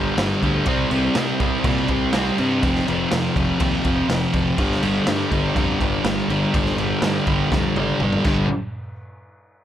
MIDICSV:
0, 0, Header, 1, 4, 480
1, 0, Start_track
1, 0, Tempo, 489396
1, 651, Time_signature, 4, 2, 24, 8
1, 9458, End_track
2, 0, Start_track
2, 0, Title_t, "Distorted electric guitar"
2, 0, Program_c, 0, 30
2, 0, Note_on_c, 0, 43, 73
2, 0, Note_on_c, 0, 50, 85
2, 0, Note_on_c, 0, 55, 83
2, 158, Note_off_c, 0, 43, 0
2, 161, Note_off_c, 0, 50, 0
2, 170, Note_off_c, 0, 55, 0
2, 170, Note_on_c, 0, 43, 91
2, 172, Note_on_c, 0, 50, 109
2, 181, Note_on_c, 0, 55, 111
2, 399, Note_off_c, 0, 43, 0
2, 409, Note_off_c, 0, 50, 0
2, 411, Note_on_c, 0, 43, 85
2, 416, Note_off_c, 0, 55, 0
2, 421, Note_on_c, 0, 50, 87
2, 428, Note_on_c, 0, 55, 97
2, 637, Note_off_c, 0, 43, 0
2, 642, Note_off_c, 0, 50, 0
2, 645, Note_off_c, 0, 55, 0
2, 654, Note_on_c, 0, 48, 95
2, 660, Note_on_c, 0, 55, 93
2, 664, Note_on_c, 0, 60, 110
2, 877, Note_off_c, 0, 48, 0
2, 887, Note_off_c, 0, 55, 0
2, 889, Note_on_c, 0, 48, 84
2, 896, Note_off_c, 0, 60, 0
2, 899, Note_on_c, 0, 55, 86
2, 900, Note_on_c, 0, 60, 91
2, 1117, Note_off_c, 0, 48, 0
2, 1122, Note_off_c, 0, 55, 0
2, 1129, Note_on_c, 0, 48, 96
2, 1133, Note_on_c, 0, 55, 97
2, 1136, Note_off_c, 0, 60, 0
2, 1140, Note_on_c, 0, 60, 109
2, 1364, Note_off_c, 0, 48, 0
2, 1372, Note_off_c, 0, 55, 0
2, 1376, Note_on_c, 0, 48, 80
2, 1384, Note_off_c, 0, 60, 0
2, 1384, Note_on_c, 0, 55, 89
2, 1388, Note_on_c, 0, 60, 88
2, 1603, Note_off_c, 0, 48, 0
2, 1611, Note_off_c, 0, 55, 0
2, 1615, Note_on_c, 0, 48, 88
2, 1617, Note_off_c, 0, 60, 0
2, 1623, Note_on_c, 0, 55, 101
2, 1629, Note_on_c, 0, 60, 90
2, 1841, Note_off_c, 0, 48, 0
2, 1851, Note_off_c, 0, 55, 0
2, 1853, Note_on_c, 0, 48, 83
2, 1860, Note_off_c, 0, 60, 0
2, 1863, Note_on_c, 0, 55, 83
2, 1872, Note_on_c, 0, 60, 84
2, 2067, Note_off_c, 0, 48, 0
2, 2078, Note_off_c, 0, 55, 0
2, 2079, Note_on_c, 0, 48, 97
2, 2087, Note_off_c, 0, 60, 0
2, 2090, Note_on_c, 0, 55, 112
2, 2099, Note_on_c, 0, 60, 113
2, 2325, Note_off_c, 0, 48, 0
2, 2332, Note_off_c, 0, 55, 0
2, 2337, Note_on_c, 0, 48, 88
2, 2340, Note_off_c, 0, 60, 0
2, 2344, Note_on_c, 0, 55, 88
2, 2352, Note_on_c, 0, 60, 91
2, 2560, Note_off_c, 0, 48, 0
2, 2563, Note_off_c, 0, 55, 0
2, 2567, Note_off_c, 0, 60, 0
2, 2570, Note_on_c, 0, 41, 98
2, 2577, Note_on_c, 0, 48, 103
2, 2579, Note_on_c, 0, 53, 101
2, 2794, Note_off_c, 0, 41, 0
2, 2801, Note_off_c, 0, 48, 0
2, 2806, Note_on_c, 0, 41, 87
2, 2810, Note_off_c, 0, 53, 0
2, 2813, Note_on_c, 0, 48, 89
2, 2822, Note_on_c, 0, 53, 102
2, 3041, Note_off_c, 0, 41, 0
2, 3049, Note_off_c, 0, 48, 0
2, 3052, Note_on_c, 0, 41, 89
2, 3058, Note_off_c, 0, 53, 0
2, 3060, Note_on_c, 0, 48, 91
2, 3070, Note_on_c, 0, 53, 100
2, 3284, Note_off_c, 0, 41, 0
2, 3288, Note_off_c, 0, 48, 0
2, 3295, Note_off_c, 0, 53, 0
2, 3296, Note_on_c, 0, 41, 82
2, 3299, Note_on_c, 0, 48, 88
2, 3306, Note_on_c, 0, 53, 95
2, 3514, Note_off_c, 0, 41, 0
2, 3521, Note_off_c, 0, 48, 0
2, 3525, Note_on_c, 0, 41, 93
2, 3526, Note_off_c, 0, 53, 0
2, 3533, Note_on_c, 0, 48, 102
2, 3538, Note_on_c, 0, 53, 104
2, 3762, Note_off_c, 0, 41, 0
2, 3765, Note_off_c, 0, 48, 0
2, 3771, Note_off_c, 0, 53, 0
2, 3774, Note_on_c, 0, 41, 74
2, 3777, Note_on_c, 0, 48, 86
2, 3783, Note_on_c, 0, 53, 92
2, 3999, Note_off_c, 0, 41, 0
2, 4005, Note_off_c, 0, 48, 0
2, 4011, Note_off_c, 0, 53, 0
2, 4011, Note_on_c, 0, 41, 104
2, 4017, Note_on_c, 0, 48, 108
2, 4022, Note_on_c, 0, 53, 105
2, 4236, Note_off_c, 0, 41, 0
2, 4243, Note_off_c, 0, 48, 0
2, 4247, Note_off_c, 0, 53, 0
2, 4248, Note_on_c, 0, 41, 93
2, 4255, Note_on_c, 0, 48, 96
2, 4259, Note_on_c, 0, 53, 91
2, 4475, Note_off_c, 0, 41, 0
2, 4479, Note_off_c, 0, 48, 0
2, 4481, Note_off_c, 0, 53, 0
2, 4504, Note_on_c, 0, 43, 91
2, 4508, Note_on_c, 0, 50, 107
2, 4521, Note_on_c, 0, 55, 119
2, 4731, Note_off_c, 0, 43, 0
2, 4731, Note_off_c, 0, 50, 0
2, 4735, Note_on_c, 0, 43, 92
2, 4743, Note_on_c, 0, 50, 95
2, 4748, Note_off_c, 0, 55, 0
2, 4752, Note_on_c, 0, 55, 93
2, 4968, Note_off_c, 0, 50, 0
2, 4969, Note_off_c, 0, 43, 0
2, 4973, Note_on_c, 0, 43, 94
2, 4980, Note_off_c, 0, 55, 0
2, 4980, Note_on_c, 0, 50, 103
2, 4984, Note_on_c, 0, 55, 121
2, 5202, Note_off_c, 0, 43, 0
2, 5206, Note_on_c, 0, 43, 85
2, 5207, Note_off_c, 0, 50, 0
2, 5219, Note_on_c, 0, 50, 98
2, 5220, Note_off_c, 0, 55, 0
2, 5224, Note_on_c, 0, 55, 95
2, 5445, Note_off_c, 0, 43, 0
2, 5446, Note_off_c, 0, 50, 0
2, 5449, Note_on_c, 0, 43, 91
2, 5457, Note_off_c, 0, 55, 0
2, 5457, Note_on_c, 0, 50, 97
2, 5461, Note_on_c, 0, 55, 97
2, 5682, Note_off_c, 0, 50, 0
2, 5685, Note_off_c, 0, 43, 0
2, 5689, Note_on_c, 0, 43, 78
2, 5694, Note_on_c, 0, 50, 89
2, 5697, Note_off_c, 0, 55, 0
2, 5701, Note_on_c, 0, 55, 86
2, 5925, Note_off_c, 0, 50, 0
2, 5928, Note_off_c, 0, 43, 0
2, 5932, Note_on_c, 0, 43, 103
2, 5937, Note_on_c, 0, 50, 106
2, 5942, Note_off_c, 0, 55, 0
2, 5946, Note_on_c, 0, 55, 109
2, 6170, Note_off_c, 0, 50, 0
2, 6172, Note_off_c, 0, 43, 0
2, 6176, Note_on_c, 0, 43, 83
2, 6182, Note_on_c, 0, 50, 88
2, 6186, Note_off_c, 0, 55, 0
2, 6190, Note_on_c, 0, 55, 97
2, 6401, Note_off_c, 0, 43, 0
2, 6407, Note_off_c, 0, 50, 0
2, 6413, Note_off_c, 0, 55, 0
2, 6413, Note_on_c, 0, 43, 99
2, 6418, Note_on_c, 0, 50, 105
2, 6424, Note_on_c, 0, 55, 111
2, 6630, Note_off_c, 0, 43, 0
2, 6641, Note_off_c, 0, 50, 0
2, 6642, Note_on_c, 0, 43, 82
2, 6649, Note_off_c, 0, 55, 0
2, 6653, Note_on_c, 0, 50, 84
2, 6661, Note_on_c, 0, 55, 97
2, 6877, Note_off_c, 0, 43, 0
2, 6882, Note_off_c, 0, 50, 0
2, 6889, Note_on_c, 0, 43, 103
2, 6891, Note_off_c, 0, 55, 0
2, 6894, Note_on_c, 0, 50, 103
2, 6903, Note_on_c, 0, 55, 99
2, 7111, Note_off_c, 0, 43, 0
2, 7121, Note_off_c, 0, 50, 0
2, 7122, Note_on_c, 0, 43, 80
2, 7127, Note_off_c, 0, 55, 0
2, 7133, Note_on_c, 0, 50, 98
2, 7139, Note_on_c, 0, 55, 90
2, 7350, Note_off_c, 0, 43, 0
2, 7354, Note_off_c, 0, 50, 0
2, 7359, Note_off_c, 0, 55, 0
2, 7362, Note_on_c, 0, 43, 88
2, 7365, Note_on_c, 0, 50, 92
2, 7371, Note_on_c, 0, 55, 101
2, 7600, Note_off_c, 0, 43, 0
2, 7606, Note_off_c, 0, 50, 0
2, 7612, Note_off_c, 0, 55, 0
2, 7612, Note_on_c, 0, 43, 80
2, 7617, Note_on_c, 0, 50, 90
2, 7624, Note_on_c, 0, 55, 94
2, 7850, Note_off_c, 0, 43, 0
2, 7857, Note_off_c, 0, 50, 0
2, 7861, Note_off_c, 0, 55, 0
2, 7862, Note_on_c, 0, 43, 101
2, 7869, Note_on_c, 0, 50, 90
2, 7872, Note_on_c, 0, 55, 104
2, 8089, Note_off_c, 0, 43, 0
2, 8096, Note_off_c, 0, 50, 0
2, 8101, Note_on_c, 0, 43, 90
2, 8102, Note_off_c, 0, 55, 0
2, 8107, Note_on_c, 0, 50, 97
2, 8115, Note_on_c, 0, 55, 97
2, 8288, Note_off_c, 0, 43, 0
2, 8291, Note_off_c, 0, 50, 0
2, 8295, Note_off_c, 0, 55, 0
2, 9458, End_track
3, 0, Start_track
3, 0, Title_t, "Picked electric bass"
3, 0, Program_c, 1, 34
3, 166, Note_on_c, 1, 31, 92
3, 322, Note_off_c, 1, 31, 0
3, 419, Note_on_c, 1, 38, 88
3, 570, Note_off_c, 1, 38, 0
3, 652, Note_on_c, 1, 36, 97
3, 805, Note_off_c, 1, 36, 0
3, 893, Note_on_c, 1, 36, 93
3, 1046, Note_off_c, 1, 36, 0
3, 1135, Note_on_c, 1, 48, 92
3, 1288, Note_off_c, 1, 48, 0
3, 1370, Note_on_c, 1, 36, 82
3, 1524, Note_off_c, 1, 36, 0
3, 1607, Note_on_c, 1, 46, 87
3, 1762, Note_off_c, 1, 46, 0
3, 1856, Note_on_c, 1, 36, 86
3, 2008, Note_off_c, 1, 36, 0
3, 2096, Note_on_c, 1, 36, 94
3, 2248, Note_off_c, 1, 36, 0
3, 2344, Note_on_c, 1, 43, 89
3, 2583, Note_on_c, 1, 29, 99
3, 2598, Note_off_c, 1, 43, 0
3, 2733, Note_off_c, 1, 29, 0
3, 2831, Note_on_c, 1, 29, 85
3, 2978, Note_off_c, 1, 29, 0
3, 3064, Note_on_c, 1, 41, 97
3, 3214, Note_off_c, 1, 41, 0
3, 3290, Note_on_c, 1, 29, 85
3, 3444, Note_off_c, 1, 29, 0
3, 3541, Note_on_c, 1, 39, 94
3, 3691, Note_off_c, 1, 39, 0
3, 3783, Note_on_c, 1, 29, 90
3, 3933, Note_off_c, 1, 29, 0
3, 4022, Note_on_c, 1, 29, 99
3, 4172, Note_off_c, 1, 29, 0
3, 4261, Note_on_c, 1, 29, 91
3, 4411, Note_off_c, 1, 29, 0
3, 4489, Note_on_c, 1, 31, 104
3, 4644, Note_off_c, 1, 31, 0
3, 4739, Note_on_c, 1, 31, 94
3, 4890, Note_off_c, 1, 31, 0
3, 4971, Note_on_c, 1, 43, 97
3, 5125, Note_off_c, 1, 43, 0
3, 5210, Note_on_c, 1, 31, 86
3, 5364, Note_off_c, 1, 31, 0
3, 5454, Note_on_c, 1, 41, 94
3, 5607, Note_off_c, 1, 41, 0
3, 5692, Note_on_c, 1, 31, 90
3, 5846, Note_off_c, 1, 31, 0
3, 5920, Note_on_c, 1, 31, 94
3, 6077, Note_off_c, 1, 31, 0
3, 6161, Note_on_c, 1, 31, 95
3, 6318, Note_off_c, 1, 31, 0
3, 6414, Note_on_c, 1, 31, 100
3, 6567, Note_off_c, 1, 31, 0
3, 6632, Note_on_c, 1, 31, 90
3, 6792, Note_off_c, 1, 31, 0
3, 6879, Note_on_c, 1, 43, 102
3, 7037, Note_off_c, 1, 43, 0
3, 7127, Note_on_c, 1, 31, 84
3, 7282, Note_off_c, 1, 31, 0
3, 7375, Note_on_c, 1, 41, 88
3, 7527, Note_off_c, 1, 41, 0
3, 7605, Note_on_c, 1, 31, 93
3, 7761, Note_off_c, 1, 31, 0
3, 7843, Note_on_c, 1, 31, 93
3, 7999, Note_off_c, 1, 31, 0
3, 8093, Note_on_c, 1, 31, 98
3, 8316, Note_off_c, 1, 31, 0
3, 9458, End_track
4, 0, Start_track
4, 0, Title_t, "Drums"
4, 175, Note_on_c, 9, 49, 85
4, 176, Note_on_c, 9, 38, 117
4, 273, Note_off_c, 9, 49, 0
4, 274, Note_off_c, 9, 38, 0
4, 418, Note_on_c, 9, 36, 79
4, 422, Note_on_c, 9, 49, 62
4, 516, Note_off_c, 9, 36, 0
4, 520, Note_off_c, 9, 49, 0
4, 643, Note_on_c, 9, 49, 85
4, 654, Note_on_c, 9, 36, 115
4, 741, Note_off_c, 9, 49, 0
4, 752, Note_off_c, 9, 36, 0
4, 891, Note_on_c, 9, 49, 60
4, 989, Note_off_c, 9, 49, 0
4, 1128, Note_on_c, 9, 49, 77
4, 1129, Note_on_c, 9, 38, 118
4, 1226, Note_off_c, 9, 49, 0
4, 1227, Note_off_c, 9, 38, 0
4, 1372, Note_on_c, 9, 49, 64
4, 1375, Note_on_c, 9, 36, 88
4, 1470, Note_off_c, 9, 49, 0
4, 1473, Note_off_c, 9, 36, 0
4, 1609, Note_on_c, 9, 49, 86
4, 1612, Note_on_c, 9, 36, 115
4, 1707, Note_off_c, 9, 49, 0
4, 1710, Note_off_c, 9, 36, 0
4, 1844, Note_on_c, 9, 49, 63
4, 1854, Note_on_c, 9, 36, 92
4, 1943, Note_off_c, 9, 49, 0
4, 1952, Note_off_c, 9, 36, 0
4, 2087, Note_on_c, 9, 49, 78
4, 2088, Note_on_c, 9, 38, 114
4, 2185, Note_off_c, 9, 49, 0
4, 2186, Note_off_c, 9, 38, 0
4, 2335, Note_on_c, 9, 49, 64
4, 2433, Note_off_c, 9, 49, 0
4, 2577, Note_on_c, 9, 49, 85
4, 2579, Note_on_c, 9, 36, 110
4, 2675, Note_off_c, 9, 49, 0
4, 2677, Note_off_c, 9, 36, 0
4, 2702, Note_on_c, 9, 38, 34
4, 2800, Note_off_c, 9, 38, 0
4, 2824, Note_on_c, 9, 49, 63
4, 2922, Note_off_c, 9, 49, 0
4, 3055, Note_on_c, 9, 38, 119
4, 3055, Note_on_c, 9, 49, 86
4, 3153, Note_off_c, 9, 49, 0
4, 3154, Note_off_c, 9, 38, 0
4, 3297, Note_on_c, 9, 36, 87
4, 3300, Note_on_c, 9, 49, 72
4, 3395, Note_off_c, 9, 36, 0
4, 3398, Note_off_c, 9, 49, 0
4, 3529, Note_on_c, 9, 49, 92
4, 3538, Note_on_c, 9, 36, 124
4, 3627, Note_off_c, 9, 49, 0
4, 3636, Note_off_c, 9, 36, 0
4, 3770, Note_on_c, 9, 49, 68
4, 3778, Note_on_c, 9, 36, 97
4, 3868, Note_off_c, 9, 49, 0
4, 3876, Note_off_c, 9, 36, 0
4, 4017, Note_on_c, 9, 49, 83
4, 4018, Note_on_c, 9, 38, 109
4, 4115, Note_off_c, 9, 49, 0
4, 4116, Note_off_c, 9, 38, 0
4, 4251, Note_on_c, 9, 49, 69
4, 4256, Note_on_c, 9, 36, 84
4, 4349, Note_off_c, 9, 49, 0
4, 4354, Note_off_c, 9, 36, 0
4, 4492, Note_on_c, 9, 49, 89
4, 4495, Note_on_c, 9, 36, 109
4, 4590, Note_off_c, 9, 49, 0
4, 4593, Note_off_c, 9, 36, 0
4, 4624, Note_on_c, 9, 38, 36
4, 4722, Note_off_c, 9, 38, 0
4, 4733, Note_on_c, 9, 49, 64
4, 4831, Note_off_c, 9, 49, 0
4, 4970, Note_on_c, 9, 49, 86
4, 4971, Note_on_c, 9, 38, 117
4, 5068, Note_off_c, 9, 49, 0
4, 5069, Note_off_c, 9, 38, 0
4, 5215, Note_on_c, 9, 36, 83
4, 5215, Note_on_c, 9, 49, 64
4, 5313, Note_off_c, 9, 36, 0
4, 5313, Note_off_c, 9, 49, 0
4, 5453, Note_on_c, 9, 36, 113
4, 5457, Note_on_c, 9, 49, 82
4, 5552, Note_off_c, 9, 36, 0
4, 5555, Note_off_c, 9, 49, 0
4, 5694, Note_on_c, 9, 36, 88
4, 5696, Note_on_c, 9, 49, 62
4, 5792, Note_off_c, 9, 36, 0
4, 5795, Note_off_c, 9, 49, 0
4, 5929, Note_on_c, 9, 49, 78
4, 5930, Note_on_c, 9, 38, 118
4, 6027, Note_off_c, 9, 49, 0
4, 6028, Note_off_c, 9, 38, 0
4, 6179, Note_on_c, 9, 49, 62
4, 6277, Note_off_c, 9, 49, 0
4, 6416, Note_on_c, 9, 36, 110
4, 6416, Note_on_c, 9, 49, 80
4, 6514, Note_off_c, 9, 36, 0
4, 6514, Note_off_c, 9, 49, 0
4, 6530, Note_on_c, 9, 38, 36
4, 6628, Note_off_c, 9, 38, 0
4, 6651, Note_on_c, 9, 49, 64
4, 6749, Note_off_c, 9, 49, 0
4, 6885, Note_on_c, 9, 49, 85
4, 6886, Note_on_c, 9, 38, 109
4, 6983, Note_off_c, 9, 49, 0
4, 6984, Note_off_c, 9, 38, 0
4, 7127, Note_on_c, 9, 49, 69
4, 7132, Note_on_c, 9, 36, 91
4, 7225, Note_off_c, 9, 49, 0
4, 7230, Note_off_c, 9, 36, 0
4, 7374, Note_on_c, 9, 36, 115
4, 7376, Note_on_c, 9, 38, 69
4, 7472, Note_off_c, 9, 36, 0
4, 7474, Note_off_c, 9, 38, 0
4, 7614, Note_on_c, 9, 48, 79
4, 7712, Note_off_c, 9, 48, 0
4, 7847, Note_on_c, 9, 47, 88
4, 7945, Note_off_c, 9, 47, 0
4, 7970, Note_on_c, 9, 45, 80
4, 8068, Note_off_c, 9, 45, 0
4, 8086, Note_on_c, 9, 57, 89
4, 8093, Note_on_c, 9, 36, 112
4, 8184, Note_off_c, 9, 57, 0
4, 8191, Note_off_c, 9, 36, 0
4, 9458, End_track
0, 0, End_of_file